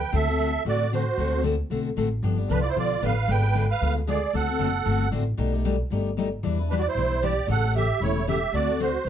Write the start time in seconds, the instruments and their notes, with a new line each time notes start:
Already playing: accordion B4 G5
0.12 upright bass D2, steel-string acoustic guitar D3 A3 C4 F#4 A4, accordion A4 E5
0.27 steel-string acoustic guitar C4 F#4 A4
0.39 steel-string acoustic guitar D3 A3 C4 F#4 A4
0.65 upright bass A1, steel-string acoustic guitar D3 A3 C4 F#4 A4, accordion F#4
0.69 accordion D5
0.92 steel-string acoustic guitar D3 A3 C4 F#4 A4, accordion F#4 C5
1.17 upright bass D2, steel-string acoustic guitar D3 A3 C4 F#4 A4
1.32 steel-string acoustic guitar C4 F#4 A4
1.43 steel-string acoustic guitar D3 A3 C4 F#4 A4
1.70 upright bass B1, steel-string acoustic guitar D3 A3 C4 F#4 A4
1.96 upright bass A1, steel-string acoustic guitar D3 A3 C4 F#4 A4
2.23 upright bass G1, steel-string acoustic guitar D3 F3 B3 D4 G4
2.37 steel-string acoustic guitar B3 D4 G4
2.48 upright bass C2, steel-string acoustic guitar D3 F3 B3 D4 G4, accordion C4 D4 A#4
2.52 accordion B4
2.59 accordion F4 D5
2.67 accordion E4 C5
2.75 upright bass B1, steel-string acoustic guitar D3 F3 B3 D4 G4, accordion F4
2.79 accordion D5
3.01 upright bass A1, steel-string acoustic guitar D3 F3 B3 D4 G4, accordion B4
3.05 accordion F5
3.27 upright bass G#1, steel-string acoustic guitar D3 G#3 B3 F4 G#4, accordion B4 G5
3.42 steel-string acoustic guitar B3 F4 G#4
3.54 steel-string acoustic guitar D3 G#3 B3 F4 G#4
3.69 accordion B4 F5
3.81 upright bass D2, steel-string acoustic guitar D3 G#3 B3 F4 G#4
4.07 steel-string acoustic guitar D3 G#3 B3 F4 G#4, accordion G#4 D5
4.33 upright bass D2, steel-string acoustic guitar D3 A3 C4 F#4 A4, accordion A4 F#5
4.47 steel-string acoustic guitar C4 F#4 A4
4.58 upright bass F#1, steel-string acoustic guitar D3 A3 C4 F#4 A4
4.85 upright bass G1, steel-string acoustic guitar D3 A3 C4 F#4 A4
5.12 upright bass A1, steel-string acoustic guitar D3 A3 C4 F#4 A4
5.37 upright bass B1, steel-string acoustic guitar B2 G3 A3 D#4 G4
5.53 steel-string acoustic guitar A3 D#4 G4
5.64 steel-string acoustic guitar B2 G3 A3 D#4 G4
5.90 upright bass G1, steel-string acoustic guitar B2 G3 A3 D#4 G4
6.17 steel-string acoustic guitar B2 G3 A3 D#4 G4
6.43 upright bass E2, steel-string acoustic guitar E3 G3 D4 E4 B4
6.59 steel-string acoustic guitar D4 E4 B4
6.69 steel-string acoustic guitar E3 G3 D4 E4 B4, accordion D4 B4
6.78 accordion F#4 D5
6.86 accordion E4 C5
6.95 upright bass B1, steel-string acoustic guitar E3 G3 D4 E4 B4
7.22 steel-string acoustic guitar E3 G3 D4 E4 B4, accordion G4 D5
7.47 upright bass A1, steel-string acoustic guitar C#3 E3 A3 C#4 G4, accordion A4
7.51 accordion F#5
7.61 steel-string acoustic guitar A3 C#4 G4
7.75 steel-string acoustic guitar C#3 E3 A3 C#4 G4, accordion G4 E5
8.00 upright bass E1, steel-string acoustic guitar C#3 E3 A3 C#4 G4, accordion E4 C#5
8.27 steel-string acoustic guitar C#3 E3 A3 C#4 G4, accordion G4 E5
8.52 upright bass D2, steel-string acoustic guitar D3 A3 C4 F#4 A4, accordion F#4 D5
8.68 steel-string acoustic guitar C4 F#4 A4
8.80 steel-string acoustic guitar D3 A3 C4 F#4 A4, accordion F#4 C5
9.05 upright bass B1, steel-string acoustic guitar B2, accordion D#4